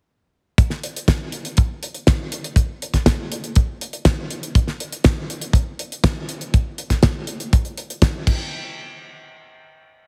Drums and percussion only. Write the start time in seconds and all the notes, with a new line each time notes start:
0.58 kick, closed hi-hat
0.70 snare
0.83 closed hi-hat
0.96 closed hi-hat
1.08 kick, snare, closed hi-hat
1.32 closed hi-hat
1.45 closed hi-hat
1.57 kick, closed hi-hat
1.83 closed hi-hat
1.94 closed hi-hat
2.07 kick, snare, closed hi-hat
2.32 closed hi-hat
2.44 closed hi-hat
2.56 kick, closed hi-hat
2.82 closed hi-hat
2.94 kick, snare, closed hi-hat
3.06 kick, snare, closed hi-hat
3.32 closed hi-hat
3.44 closed hi-hat
3.55 kick, closed hi-hat
3.81 closed hi-hat
3.93 closed hi-hat
4.05 kick, snare, closed hi-hat
4.30 closed hi-hat
4.43 closed hi-hat
4.55 kick, closed hi-hat
4.67 snare
4.80 closed hi-hat
4.92 closed hi-hat
5.04 kick, snare, closed hi-hat
5.30 closed hi-hat
5.41 closed hi-hat
5.53 kick, closed hi-hat
5.79 closed hi-hat
5.92 closed hi-hat
6.04 kick, snare, closed hi-hat
6.29 closed hi-hat
6.41 closed hi-hat
6.54 kick, closed hi-hat
6.78 closed hi-hat
6.90 kick, snare, closed hi-hat
7.03 kick, snare, closed hi-hat
7.27 closed hi-hat
7.40 closed hi-hat
7.53 kick, closed hi-hat
7.65 closed hi-hat
7.77 closed hi-hat
7.90 closed hi-hat
8.02 kick, snare, closed hi-hat
8.27 kick, crash